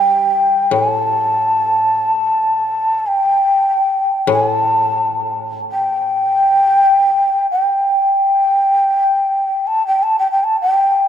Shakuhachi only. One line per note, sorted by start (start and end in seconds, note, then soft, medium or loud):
0.00 0.74 G5 medium
0.72 0.92 G#5 medium
0.92 3.08 A5 medium
3.07 4.30 G5 medium
4.32 4.51 G#5 medium
4.51 5.35 A5 medium
5.72 7.46 G5 medium
7.51 9.68 G5 medium
9.67 9.86 A5 medium
9.87 10.04 G5 medium
10.03 10.17 A5 medium
10.19 10.30 G5 medium
10.31 10.45 G5 medium
10.44 10.60 A5 medium
10.61 11.08 G5 medium